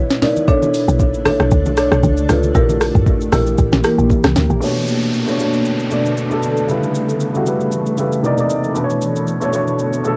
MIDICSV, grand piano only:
0, 0, Header, 1, 2, 480
1, 0, Start_track
1, 0, Key_signature, 2, "minor"
1, 0, Tempo, 517241
1, 445, Time_signature, 4, 2, 24, 8
1, 9434, End_track
2, 0, Start_track
2, 0, Title_t, "Grand piano"
2, 0, Program_c, 0, 0
2, 4275, Note_on_c, 0, 47, 82
2, 4286, Note_on_c, 0, 57, 72
2, 4296, Note_on_c, 0, 62, 78
2, 4306, Note_on_c, 0, 73, 91
2, 4480, Control_c, 0, 64, 127
2, 4760, Note_off_c, 0, 47, 0
2, 4765, Note_off_c, 0, 57, 0
2, 4771, Note_off_c, 0, 62, 0
2, 4776, Note_off_c, 0, 73, 0
2, 4887, Note_on_c, 0, 47, 83
2, 4897, Note_on_c, 0, 57, 77
2, 4908, Note_on_c, 0, 62, 75
2, 4919, Note_on_c, 0, 73, 86
2, 4978, Note_off_c, 0, 47, 0
2, 4984, Note_off_c, 0, 57, 0
2, 4989, Note_off_c, 0, 62, 0
2, 4994, Note_off_c, 0, 73, 0
2, 4994, Note_on_c, 0, 47, 81
2, 5004, Note_on_c, 0, 57, 75
2, 5015, Note_on_c, 0, 62, 71
2, 5026, Note_on_c, 0, 73, 86
2, 5393, Note_off_c, 0, 47, 0
2, 5399, Note_off_c, 0, 57, 0
2, 5404, Note_off_c, 0, 62, 0
2, 5409, Note_off_c, 0, 73, 0
2, 5473, Note_on_c, 0, 47, 78
2, 5485, Note_on_c, 0, 57, 75
2, 5495, Note_on_c, 0, 62, 77
2, 5506, Note_on_c, 0, 74, 90
2, 5772, Note_off_c, 0, 47, 0
2, 5778, Note_off_c, 0, 57, 0
2, 5783, Note_off_c, 0, 62, 0
2, 5788, Note_off_c, 0, 74, 0
2, 5846, Note_on_c, 0, 47, 79
2, 5856, Note_on_c, 0, 57, 72
2, 5867, Note_on_c, 0, 62, 72
2, 5877, Note_on_c, 0, 69, 88
2, 6135, Note_off_c, 0, 47, 0
2, 6140, Note_off_c, 0, 57, 0
2, 6145, Note_off_c, 0, 62, 0
2, 6151, Note_off_c, 0, 69, 0
2, 6194, Note_on_c, 0, 49, 83
2, 6204, Note_on_c, 0, 55, 76
2, 6215, Note_on_c, 0, 64, 76
2, 6218, Control_c, 0, 64, 0
2, 6225, Note_on_c, 0, 71, 94
2, 6389, Control_c, 0, 64, 127
2, 6680, Note_off_c, 0, 49, 0
2, 6685, Note_off_c, 0, 55, 0
2, 6690, Note_off_c, 0, 64, 0
2, 6695, Note_off_c, 0, 71, 0
2, 6804, Note_on_c, 0, 49, 81
2, 6815, Note_on_c, 0, 55, 77
2, 6826, Note_on_c, 0, 64, 74
2, 6836, Note_on_c, 0, 66, 88
2, 6897, Note_off_c, 0, 49, 0
2, 6903, Note_off_c, 0, 55, 0
2, 6908, Note_off_c, 0, 64, 0
2, 6913, Note_off_c, 0, 66, 0
2, 6913, Note_on_c, 0, 49, 83
2, 6924, Note_on_c, 0, 55, 75
2, 6934, Note_on_c, 0, 64, 75
2, 6945, Note_on_c, 0, 71, 89
2, 7313, Note_off_c, 0, 49, 0
2, 7318, Note_off_c, 0, 55, 0
2, 7323, Note_off_c, 0, 64, 0
2, 7329, Note_off_c, 0, 71, 0
2, 7394, Note_on_c, 0, 49, 83
2, 7405, Note_on_c, 0, 55, 78
2, 7415, Note_on_c, 0, 64, 77
2, 7426, Note_on_c, 0, 71, 89
2, 7634, Note_on_c, 0, 48, 83
2, 7640, Note_off_c, 0, 49, 0
2, 7645, Note_off_c, 0, 55, 0
2, 7645, Note_on_c, 0, 58, 80
2, 7650, Note_off_c, 0, 64, 0
2, 7656, Note_off_c, 0, 71, 0
2, 7656, Note_on_c, 0, 63, 79
2, 7657, Control_c, 0, 64, 0
2, 7667, Note_on_c, 0, 74, 94
2, 7745, Note_off_c, 0, 48, 0
2, 7751, Note_off_c, 0, 58, 0
2, 7756, Note_off_c, 0, 63, 0
2, 7762, Note_off_c, 0, 74, 0
2, 7766, Note_on_c, 0, 48, 80
2, 7777, Note_on_c, 0, 58, 75
2, 7787, Note_on_c, 0, 63, 76
2, 7798, Note_on_c, 0, 74, 90
2, 7827, Control_c, 0, 64, 127
2, 8055, Note_off_c, 0, 48, 0
2, 8060, Note_off_c, 0, 58, 0
2, 8066, Note_off_c, 0, 63, 0
2, 8071, Note_off_c, 0, 74, 0
2, 8115, Note_on_c, 0, 47, 82
2, 8125, Note_on_c, 0, 57, 75
2, 8136, Control_c, 0, 64, 0
2, 8136, Note_on_c, 0, 62, 78
2, 8146, Note_on_c, 0, 71, 71
2, 8199, Note_off_c, 0, 71, 0
2, 8204, Note_on_c, 0, 73, 91
2, 8308, Control_c, 0, 64, 127
2, 8600, Note_off_c, 0, 47, 0
2, 8605, Note_off_c, 0, 57, 0
2, 8611, Note_off_c, 0, 62, 0
2, 8645, Note_off_c, 0, 73, 0
2, 8726, Note_on_c, 0, 47, 84
2, 8736, Note_on_c, 0, 57, 79
2, 8747, Note_on_c, 0, 62, 73
2, 8757, Note_on_c, 0, 73, 91
2, 8818, Note_off_c, 0, 47, 0
2, 8823, Note_off_c, 0, 57, 0
2, 8828, Note_off_c, 0, 62, 0
2, 8833, Note_on_c, 0, 47, 81
2, 8834, Note_off_c, 0, 73, 0
2, 8844, Note_on_c, 0, 57, 73
2, 8854, Note_on_c, 0, 62, 78
2, 8865, Note_on_c, 0, 73, 95
2, 9233, Note_off_c, 0, 47, 0
2, 9238, Note_off_c, 0, 57, 0
2, 9243, Note_off_c, 0, 62, 0
2, 9249, Note_off_c, 0, 73, 0
2, 9314, Note_on_c, 0, 47, 81
2, 9325, Note_on_c, 0, 57, 75
2, 9335, Note_on_c, 0, 62, 72
2, 9346, Note_on_c, 0, 69, 95
2, 9434, Note_off_c, 0, 47, 0
2, 9434, Note_off_c, 0, 57, 0
2, 9434, Note_off_c, 0, 62, 0
2, 9434, Note_off_c, 0, 69, 0
2, 9434, End_track
0, 0, End_of_file